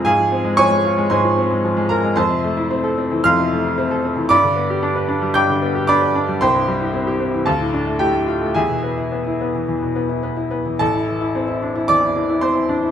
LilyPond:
<<
  \new Staff \with { instrumentName = "Grand piano" } { \time 4/4 \key c \phrygian \tempo 4 = 112 <aes' f'' aes''>4 <des'' aes'' des'''>4 <c'' aes'' c'''>4 r8 <bes' bes''>8 | \key a \minor <c'' a'' c'''>2 <f'' c''' f'''>2 | <d'' b'' d'''>2 <g'' d''' g'''>4 <d'' b'' d'''>4 | <c'' g'' c'''>2 <a' f'' a''>4 <g' g''>4 |
<gis' e'' gis''>2. r4 | <a' a''>2 <d'' d'''>4 <c'' c'''>4 | }
  \new Staff \with { instrumentName = "Grand piano" } { \time 4/4 \key c \phrygian aes,16 f16 c'16 aes16 f16 aes16 f'16 aes16 aes,16 f16 c'16 aes16 f16 aes16 f'16 aes16 | \key a \minor f,16 c16 a16 e'16 c'16 a'16 c'16 e16 f,16 c16 a16 e'16 c'16 a'16 c'16 e16 | g,16 d16 b16 g'16 d'16 b'16 d'16 g16 g,16 d16 b16 g'16 d'16 b'16 d'16 g16 | c,16 g,16 g16 e'16 c'16 g'16 c'16 e16 d,16 a,16 d'16 a16 a,16 a16 f'16 a16 |
e,16 b,16 b16 e'16 b16 e'16 b16 e16 e,16 b,16 b16 e'16 b16 e'16 b16 e16 | a,,16 e'16 e16 e'16 c'16 e'16 d'16 e'16 e,16 e'16 e16 e'16 c'16 e'16 d'16 e'16 | }
>>